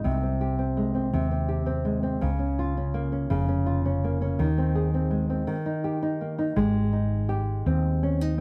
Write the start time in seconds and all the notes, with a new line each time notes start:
Already playing: G#3 D#4 F4
0.04 C2 C3
0.23 C4
0.41 G4
0.59 C4
0.77 G#3
0.94 C4
1.13 D#2 C3
1.31 C4
1.48 G4
1.66 C4
1.85 G#3
2.03 C4
2.21 C#2 C#3
2.39 C#4
2.59 F4
2.77 C#4
2.94 A#3
3.12 C#4
3.30 F1 C#3
3.48 C#4
3.66 F4
3.85 C#4
4.04 A#3
4.21 C#4
4.39 D#2 D#3
4.58 C4
4.75 G#4
4.94 C4
5.11 G#3
5.30 C4
5.47 D#3
5.66 D#4
5.84 G4
6.02 D#4
6.21 A#3
6.38 D#4
6.56 G#1 G#3 G4
6.93 D#4
7.29 G4
7.66 D#2 C4
8.03 C#4
8.21 D#4